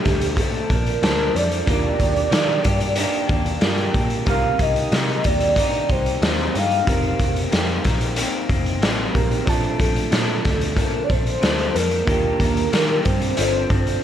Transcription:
Already playing: D4 F4 G4 C5 A5
0.05 D2 F3 A3 D4, kick, snare, closed hi-hat
0.21 closed hi-hat
0.37 A#2 F3 A3 D4 A4, kick, closed hi-hat
0.54 closed hi-hat
0.70 A#1 F3 D4 A#4, kick, closed hi-hat
0.86 closed hi-hat
1.01 D2 A#2 F3 D4 F4 C5 A5, snare, closed hi-hat
1.34 F2 F3 A3 D4 D5, closed hi-hat
1.51 closed hi-hat
1.66 D#2 D#3 A#3 D4 F4 G4, kick, closed hi-hat
1.71 A#4
1.98 D#2 A#3 D4 G4, kick, closed hi-hat
2.16 closed hi-hat
2.30 D#3 A#3 D4 G4, snare, closed hi-hat
2.64 G2 A#3 D4 G4, kick, closed hi-hat
2.80 closed hi-hat
2.95 D#3 A#3 D4 G4, closed hi-hat
3.13 closed hi-hat
3.28 D#2 A#3 D4 G4, kick, closed hi-hat
3.46 closed hi-hat
3.61 G2 D#3 A#3 D4 F4 G4 A#4, snare, closed hi-hat
3.78 closed hi-hat
3.93 A#2 A#3 D4 G4, kick, closed hi-hat
4.10 closed hi-hat
4.25 C2 C3 A#3 C4 D#4 G4, kick, closed hi-hat
4.29 A#4 F5
4.59 C2 A#3 D#4 G4 D#5, kick, closed hi-hat
4.76 closed hi-hat
4.92 C3 A#3 D#4 G4, snare, closed hi-hat
5.09 closed hi-hat
5.24 D#2 A#3 D#4 G4 D5, kick, closed hi-hat
5.40 closed hi-hat
5.56 C3 A#3 D#4 G4, kick, closed hi-hat
5.73 closed hi-hat
5.89 C2 A#3 D#4 G4 C5, kick, closed hi-hat
6.06 closed hi-hat
6.22 D#2 C3 A#3 D#4 G4, snare, closed hi-hat
6.38 closed hi-hat
6.54 G2 A#3 D#4 G4 F5, closed hi-hat
6.71 closed hi-hat
6.84 F1 F2 D#3 A#3 C4 D#4 G4, kick, closed hi-hat
6.89 A#4
7.04 closed hi-hat
7.20 F1 D#3 A#3 C4, kick, closed hi-hat
7.36 closed hi-hat
7.51 F2 D#3 A#3 C4, snare, closed hi-hat
7.69 closed hi-hat
7.84 A#1 D#3 A#3 C4, kick, snare, closed hi-hat
8.01 closed hi-hat
8.16 F2 D#3 A#3 C4, closed hi-hat
8.49 F1 D#3 A#3 C4, kick, closed hi-hat
8.66 closed hi-hat
8.81 A1 F2 D#3 A#3 C4, snare, closed hi-hat
9.13 A#1 D#3 A#3 C4 D#4 G4 A#4, kick, closed hi-hat
9.31 closed hi-hat
9.44 A#1 A#2 F3 A3 C4 D4 F4, kick, closed hi-hat
9.49 A5
9.64 closed hi-hat
9.79 A#1 F3 A3 D4 A4, kick, closed hi-hat
9.96 closed hi-hat
10.11 A#2 F3 A3 D4, snare, closed hi-hat
10.43 D2 F3 A3 D4, kick, snare, closed hi-hat
10.61 closed hi-hat
10.76 A#2 F3 A3 D4 A#4, kick, closed hi-hat
11.04 D5
11.09 A#1 F3 A3 D4 C5, kick, closed hi-hat
11.27 closed hi-hat
11.41 D2 A#2 F3 A3 D4, snare, closed hi-hat
11.59 closed hi-hat
11.74 F2 F3 D4 A#4, closed hi-hat
11.91 closed hi-hat
12.05 D#2 D#3 A#3 D4 F4 G4 A#4, kick, closed hi-hat
12.10 G4
12.40 D#2 A#3 D4 G4, kick, closed hi-hat
12.57 closed hi-hat
12.72 D#3 A#3 D4 G4, snare, closed hi-hat
13.04 G2 A#3 D4 G4 C5, kick, closed hi-hat
13.22 closed hi-hat
13.36 G1 G2 F3 C4 D4 F4, closed hi-hat
13.41 A4
13.70 G1 F3 C4 D4, kick, closed hi-hat
13.87 closed hi-hat

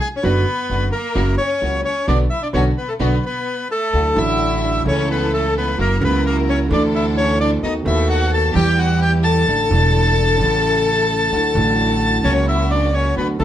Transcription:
0.01 G#5
0.16 C#4 C#5
0.23 F#1 F#2 D3 F#3 B3 D4 F#4 B4
0.69 F#1 F#2 D3 F#3 B3 D4 F#4
0.92 A#3 A#4
1.15 F#1 F#2 C#3 F#3 A#3 E4 F#4
1.38 C#4 C#5
1.61 C#2 C#3 F#3 A#3 E4 F#4
1.85 C#4 C#5
2.07 B1 D3 F#3 B3 D4 F#4 D5
2.30 E4 E5
2.42 D4 D5
2.53 B1 D3 F#3 B3 C#4 D4 F#4 C#5
2.78 B3 B4
2.88 A3 A4
3.00 B1 D3 F#3 B3 D4 F#4 B4
3.26 B3 B4
3.71 A3 A4
3.93 D2 D3 F#3 A3 D4 E4 F#4
4.14 A1 A2 D3 F#3 A3 D4 E4 F#4 E5
4.85 C#2 C#3 E3 A3 C#4 E4 A4 C#5
5.11 B3 B4
5.34 A3 A4
5.58 B3 B4
5.78 F#1 F#2 C#3 F#3 A#3 E4 F#4 A#4
6.00 C#2 C#3 F#3 A#3 B3 E4 F#4 A#4
6.04 B4
6.26 A#3 A#4
6.49 C#4 C#5
6.70 D2 D3 E3 A3 D4 E4 A4 D5
6.95 E4 E5
7.17 C#4 C#5
7.40 D4 D5
7.62 D#2 D#3 A3 B3 D#4 F#4 A4 D#5
7.84 D#2 D#3 A3 B3 D#4 E4 F#4 A4 E5
8.08 F#4 F#5
8.32 A4 A5
8.53 E2 E3 G3 B3 E4 G4 G5
8.79 F#4 F#5
9.00 G4 G5
9.22 A4 A5
9.47 A1 A2 D3 E3 A3 D4 E4 A4
9.69 E1 E2 D3 E3 A3 D4 E4 A4
10.38 A1 A2 C#3 E3 A3 C#4 E4 A4
11.32 D2 D3 F#3 A3 D4 E4 F#4
11.54 A1 A2 D3 F#3 A3 D4 E4 F#4
11.58 E4
12.23 C#2 C#3 F#3 A#3 C#4 F#4 C#5
12.47 E4 E5
12.70 D4 D5
12.92 C#4 C#5
13.16 D2 D3 F#3 B3 D4 F#4 B4
13.37 D2 D3 F#3 A3 B3 D4 F#4 A4
13.41 F#4

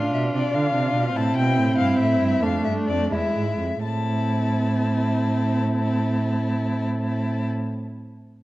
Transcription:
Already playing: A2 D4 F4 F5
0.13 B2 E5
0.34 C3 D5
0.54 D3 F4 F5
0.74 C3
0.95 B2
1.15 A2 C4 E4 A5
1.36 B2 G5
1.58 A2
1.78 G2 E4 F5
1.99 A2 E5
2.21 G2
2.42 F2 A3 D4 F5
2.65 G2 E5
2.87 F2 D5
3.11 E2 G#3 E4 E5
3.35 G#2
3.59 F2
3.84 A2 C4 E4 A5

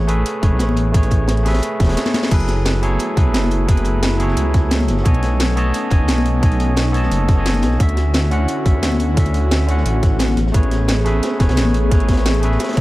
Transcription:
Already playing: A1 A3 G#4 B4 C#5
0.07 A3 G#4 B4 E5, closed hi-hat
0.26 closed hi-hat
0.42 E1 A3 G#4 B4 C#5, kick, closed hi-hat
0.52 C#2
0.59 A1, snare, closed hi-hat
0.69 high conga
0.77 closed hi-hat
0.92 A3 G#4 B4, kick, closed hi-hat
0.97 C#5
1.03 A1, closed hi-hat
1.11 kick, closed hi-hat
1.28 snare, closed hi-hat
1.37 snare, closed hi-hat
1.43 A3 G#4 B4, snare, closed hi-hat
1.48 E5, snare, closed hi-hat
1.54 snare, closed hi-hat
1.59 snare, closed hi-hat
1.62 closed hi-hat
1.80 E1, kick, snare, closed hi-hat
1.84 A3 G#4, snare, closed hi-hat
1.89 B4 C#5, snare, closed hi-hat
1.92 snare, closed hi-hat
1.97 snare, closed hi-hat
2.05 snare, closed hi-hat, high conga
2.14 snare, closed hi-hat, high conga
2.22 snare
2.29 F#1 F#3 A3 B3 E4 G#4 A4, kick, closed hi-hat, crash
2.34 B4
2.40 closed hi-hat
2.48 snare, closed hi-hat
2.65 snare, closed hi-hat
2.74 snare
2.82 F#3 E4 G#4 A4 C#5, closed hi-hat
2.99 closed hi-hat
3.16 C#2 F#3 E4 G#4 A4 B4, kick, closed hi-hat
3.26 A1
3.34 F#1, snare, closed hi-hat
3.44 high conga
3.51 closed hi-hat
3.66 F#3 E4 G#4 A4, kick, closed hi-hat
3.71 B4
3.77 F#1, closed hi-hat
3.85 closed hi-hat
4.03 snare, closed hi-hat
4.12 snare
4.18 F#3 E4 G#4 A4, closed hi-hat
4.22 C#5
4.28 snare
4.37 C#2, closed hi-hat
4.54 kick, snare, closed hi-hat
4.71 snare, closed hi-hat
4.80 high conga
4.88 F#1, snare, closed hi-hat
4.97 snare
5.03 B1 B3 C#4 D#4 A4 C#5 D#5, kick, closed hi-hat
5.08 G#5
5.14 closed hi-hat
5.23 snare, closed hi-hat
5.40 snare, closed hi-hat
5.48 snare
5.56 B3 A4 C#5 D#5 A5, closed hi-hat
5.74 closed hi-hat
5.90 F#1 B3 A4 C#5 D#5 G#5, kick, closed hi-hat
6.00 D#2
6.08 B1, snare, closed hi-hat
6.18 high conga
6.25 closed hi-hat
6.40 B3 A4 C#5 D#5, kick, closed hi-hat
6.45 G#5
6.52 B1, closed hi-hat
6.60 closed hi-hat
6.77 snare, closed hi-hat
6.86 snare
6.92 B3 A4 C#5 D#5, closed hi-hat
6.97 A5
7.03 snare
7.11 F#1, closed hi-hat
7.28 kick, snare, closed hi-hat
7.35 B3 A4 C#5 D#5
7.40 G#5
7.46 snare, closed hi-hat
7.54 closed hi-hat, high conga
7.63 B1, snare, closed hi-hat
7.71 snare
7.78 D2 D3 C#4 E4 F#4, kick, closed hi-hat
7.82 E5
7.89 closed hi-hat
7.97 snare, closed hi-hat
8.14 snare, closed hi-hat
8.24 snare
8.30 D3 C#4 F#4 F#5, closed hi-hat
8.48 closed hi-hat
8.64 A1 D3 C#4 F#4 E5, kick, closed hi-hat
8.74 F#2
8.83 D2, snare, closed hi-hat
8.92 high conga
9.00 closed hi-hat
9.15 D3 C#4 F#4, kick, closed hi-hat
9.20 E5
9.25 D2, closed hi-hat
9.34 closed hi-hat
9.51 snare, closed hi-hat
9.61 snare
9.66 D3 C#4 F#4, closed hi-hat
9.71 F#5
9.77 snare
9.86 A1, closed hi-hat
10.03 kick, snare, closed hi-hat
10.19 snare, closed hi-hat
10.28 snare, high conga
10.37 A1 B3 G#4, snare, closed hi-hat
10.47 snare
10.52 A1 A3 G#4 B4, kick, closed hi-hat
10.57 C#5
10.63 closed hi-hat
10.71 snare, closed hi-hat
10.88 snare, closed hi-hat
10.97 snare
11.05 A3 G#4 B4 E5, snare, closed hi-hat
11.23 snare, closed hi-hat
11.32 snare
11.39 E1 A3 G#4 B4 C#5, kick, snare, closed hi-hat
11.49 C#2, snare, closed hi-hat
11.56 A1, snare, closed hi-hat
11.65 high conga
11.74 closed hi-hat
11.89 A3 G#4 B4, kick, snare, closed hi-hat
11.94 C#5
12.00 A1, closed hi-hat
12.08 kick, snare, closed hi-hat
12.12 snare, closed hi-hat
12.17 snare, closed hi-hat
12.26 snare, closed hi-hat
12.35 snare, closed hi-hat
12.40 A3 G#4 B4, closed hi-hat
12.45 E5
12.52 snare
12.59 snare, closed hi-hat
12.64 snare, closed hi-hat
12.69 snare, closed hi-hat
12.73 snare, closed hi-hat
12.77 E1, kick, snare, closed hi-hat

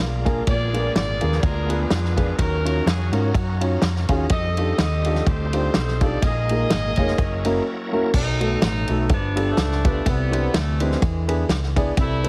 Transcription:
Already playing: G#3 A#3 D4 F4 A#4
0.00 B1 F5
0.25 A#3 D4 F4 G#4 A#4 G#5, kick, ride
0.46 A#1 A#2 G#3 B3 D4 F4 G#4 A#4 D5, kick, ride
0.73 B3 D4 F4 G#4 A#4, ride
0.93 G#1 F4 G#4 D5, snare, ride
1.21 D#2 B3 D4 F4 G#4 A#4, ride
1.32 snare
1.41 D2 D4 F4 A#4, kick, ride
1.69 B3 D4 F4 G#4 B4, ride
1.78 B3 D4 G#4
1.90 F2, snare, ride
2.05 snare
2.15 B3 D4 F4 G#4 B4, kick, ride
2.35 D#2 D#3 C#4 D#4 F#4 A4 A#4 F5, kick, ride
2.40 F#3
2.45 A#4
2.65 C#4 D#4 F4 F#4 A#4, ride
2.83 F2 G#4
2.87 snare, ride
3.11 G#2 A#3 C#4 D#4 F4 F#4 A#4, ride
3.34 F#2, kick, ride
3.61 C#4 D#4 F4 F#4 C#5, ride
3.82 F2, snare, ride
3.96 snare
4.09 D#2 C#4 D#4 F4 F#4 G#4, kick, ride
4.29 F2 G3 C4 D#4 F4 G4 A4 D#5, kick, ride
4.57 D4 D#4 F4 G4 A4, ride
4.78 D#2 G4 A4 D#5, snare, ride
5.04 D4 D#4 F4 G4 A4, ride
5.15 snare
5.26 D2 D#4 A4 C5, kick, ride
5.53 D4 D#4 F4 G4 C5, ride
5.74 B1, snare, ride
5.88 snare
6.01 D4 D#4 F4 G4 A4 D5, kick, ride
6.21 A#1 A#2 G#3 A#3 D#4 F4 G#4 D#5, kick, ride
6.27 A#4
6.49 A#3 D#4 F4 G#4 A#4, ride
6.70 G#1, snare, ride
6.96 F1 A#3 D#4 F4 G#4 C#5, kick, ride
7.08 snare
7.17 F#1 F#3 A#3 C#4 E4 A#4, kick, ride
7.45 A#3 C#4 E4 F#4 A#4, ride
7.92 A#3 C#4 E4 F#4 A#4
8.14 B1 B2 F#3 A3 D#4, kick, crash
8.40 A3 B3 D#4 F#4 A4, ride
8.62 A1 F#3 A3 D#4, snare, ride
8.88 B1 A3 B3 D#4 F#4 A4, ride
9.09 G1 G2 F3 B3 D4, kick, ride
9.35 B3 D4 F4 G4 A4, ride
9.48 F3 A3
9.57 C#2, snare, ride
9.72 snare
9.84 A3 B3 D4 F4 G4 B4, kick, ride
10.05 C2 C3 D3 E3 B3, kick, ride
10.31 C4 D4 E4 G4 B4, ride
10.54 D2 A3, snare, ride
10.80 B2 D3 G#3 C4 D4 E4 G4 B4, ride
10.92 snare
11.01 E2 E3, kick, ride
11.28 B3 D4 E4 G#4 B4, ride
11.49 C#2, snare, ride
11.63 snare
11.76 B3 D4 E4 G#4 D5, kick, ride
11.97 C2 C3 G3 A3 E4, kick, ride
12.23 C4 E4 G4 A4 B4, ride

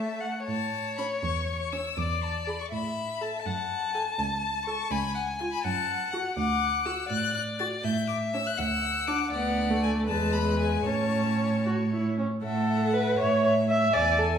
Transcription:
Already playing: A3 E5 A5
0.20 F#5
0.47 A2 C#5 A5
0.97 C#4 B5
1.23 E2 C#6
1.48 C#6
1.72 C#4 E6
1.97 E2 D5 D6
2.23 A5
2.47 G#4 B5
2.60 C#6
2.72 A2 E5 B5
3.21 A4 A5
3.45 F#2 F#5 A5
3.94 A4 G#5
4.18 C#2 A5
4.43 A5
4.65 A4 C#6
4.91 C#2 G#5 B5
5.15 F#5
5.39 F4 G#5
5.51 B5
5.63 F#2 F#5 A5
6.12 F#4 F#5
6.37 D2 F#5 D6
6.86 F#4 E6
7.09 A2 D5 F#6
7.34 F#6
7.59 F#4 A6
7.84 A2 E5 G6
8.08 D6
8.34 C#4 E6
8.46 F#6
8.58 D2 F#5 E6
9.07 D4 D6
9.32 D2 B3 D5 F#5
9.70 A3
9.83 G#5
10.08 E2 G#3 B4 A5
10.33 B5
10.59 G#5
10.86 A2 C#4 C#5 A5
11.66 F#4
11.92 E4
12.18 C#4
12.43 A2 A4 E5 F#5
12.69 E5
12.94 B4 E5
13.19 A2 C#5 E5
13.44 C#5 E5
13.69 E5
13.94 E2 D5 G#5
14.19 A4 G#5

